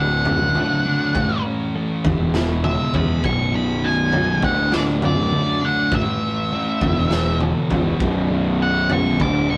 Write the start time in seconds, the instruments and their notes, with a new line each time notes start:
Already playing: fingered electric bass D1, distorted electric guitar D2 A2 D3, clean electric guitar D2 D4
0.00 lead electric guitar F#5
0.25 clean electric guitar F#3, floor tom
0.55 distorted electric guitar D2 A2 D3, clean electric guitar A3, mid tom
0.85 distorted electric guitar D2 A2 D3, clean electric guitar D4
1.15 fingered electric bass A1, clean electric guitar A2, distorted electric guitar A2 E3 A3, kick, floor tom
1.46 clean electric guitar C#4
1.75 distorted electric guitar A2 E3 A3, clean electric guitar A4
2.04 fingered electric bass E1, distorted electric guitar E2 B2 E3, clean electric guitar E2, kick, floor tom
2.34 distorted electric guitar E2 B2 E3, clean electric guitar E4, snare
2.64 clean electric guitar G#3, lead electric guitar E5, mid tom
2.94 fingered electric bass E2, distorted electric guitar E2 B2 E3, clean electric guitar B3, lead electric guitar B5, kick, floor tom
3.24 fingered electric bass B0, distorted electric guitar B1 F#2 B2, clean electric guitar B1, lead electric guitar C#6, kick
3.54 distorted electric guitar B1 F#2 B2, clean electric guitar B1, lead electric guitar B5
3.84 clean electric guitar B2, lead electric guitar G#5
4.13 distorted electric guitar B1 F#2 B2, clean electric guitar D#4, floor tom
4.43 fingered electric bass D1, clean electric guitar D2, distorted electric guitar D2 A2 D3, lead electric guitar F#5, kick
4.72 distorted electric guitar D2 A2 D3, clean electric guitar D4, lead electric guitar D5, snare
5.02 clean electric guitar F#3, lead electric guitar D5, floor tom
5.32 distorted electric guitar D2 A2 D3, clean electric guitar A3
5.62 distorted electric guitar D2 A2 D3, clean electric guitar D4, lead electric guitar F#5
5.92 fingered electric bass A1, distorted electric guitar A2 E3 A3, lead electric guitar E5, kick, floor tom
6.53 distorted electric guitar A2 E3 A3
6.81 fingered electric bass E1, distorted electric guitar E2 B2 E3, kick, floor tom
7.11 distorted electric guitar E2 B2 E3, snare
7.40 mid tom
7.70 fingered electric bass C#1, distorted electric guitar E2 B2 E3, kick, floor tom
8.00 fingered electric bass B0, distorted electric guitar B1 F#2 B2, kick
8.31 distorted electric guitar B1 F#2 B2
8.62 lead electric guitar F#5
8.90 distorted electric guitar B1 F#2 B2, lead electric guitar C#6, floor tom
9.20 fingered electric bass D1, distorted electric guitar D2 A2 D3, lead electric guitar D6, kick
9.49 distorted electric guitar D2 A2 D3, lead electric guitar C#6